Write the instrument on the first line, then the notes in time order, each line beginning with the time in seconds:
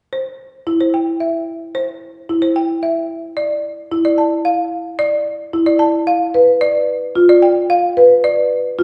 marimba
0.13 C5
0.67 E4
0.81 C5
0.94 G5
1.20 E5
1.75 C5
2.29 E4
2.42 C5
2.56 G5
2.83 E5
3.37 D5
3.92 E4
4.05 D5
4.18 A5
4.45 F5
4.99 D5
5.53 E4
5.66 D5
5.79 A5
6.07 F5
6.34 B4
6.61 D5
7.15 F4
7.29 D5
7.42 G5
7.70 F5
7.97 B4
8.24 D5
8.79 F4